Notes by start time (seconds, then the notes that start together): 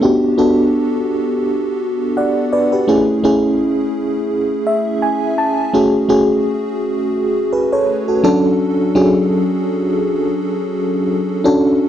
0.02 B3 D4 F#4 G4
0.38 B3 D4 F#4 A4
2.17 D5 F#5
2.53 B4 D5
2.72 G4 B4
2.88 A3 C#4 E4 G#4
3.24 A3 C#4 E4 G#4
4.67 E5
5.02 G#5
5.38 A5
5.74 A3 C#4 F#4 G#4
6.09 A3 C#4 F#4 G#4
7.53 G#4 B4
7.73 A4 C#5
8.08 F#4 A4
8.24 F#3 C#4 D4 F#4 A4
8.95 F#3 C#4 D4 F#4 G#4
11.44 C#4 D4 F#4 A4